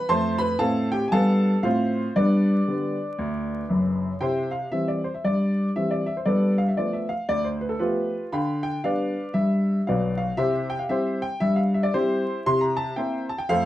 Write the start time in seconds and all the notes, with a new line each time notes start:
0.09 F2 A3 C5 A5 C6
0.38 B4 B5
0.59 A2 C4 A4 F5 A5
0.92 G4 G5
1.08 G#5
1.12 G2 B3 A4 F5 A5
1.63 A2 C4 F4 C5 F5
2.16 G2 B3 D4 B4 D5
2.67 D3 G3 B3
3.19 D2
3.69 F#1 F#2
4.21 C3 E4 C5 E5 G5
4.51 F5
4.72 E3 G3 C4 E5
4.88 D5
5.04 C5
5.14 E5
5.24 G2 D5
5.76 E3 G3 C4 E5
5.91 D5
6.06 E5
6.17 C5
6.26 G2 B3 A4 B4 D5
6.58 F5
6.68 E5
6.77 F3 A3 B3 D5
6.93 E5
7.09 F5
7.29 D2 D5
7.44 C5
7.61 B4
7.69 A4
7.79 F3 A3 B3 F4 G4 B4
8.32 D3 F5 G5 B5
8.63 G5
8.84 G3 B3 D4 B4 D5 F5
9.34 G2 E5
9.87 B1 B2 B4 D5 F5
10.18 F5
10.37 C3 E4 G4 C5 E5
10.70 G5
10.79 F5
10.89 G3 C4 E4 G4 C5 E5
11.22 G5
11.40 G2 E5
11.56 F5
11.74 E5
11.83 D5
11.94 G3 C4 E4 G4 C5
12.46 C3 E4 C6
12.61 A#5
12.77 A5
12.96 A#3 C4 E4 C5 E5 G5
13.29 A5
13.38 G5
13.49 F2 A3 A4 C5 F5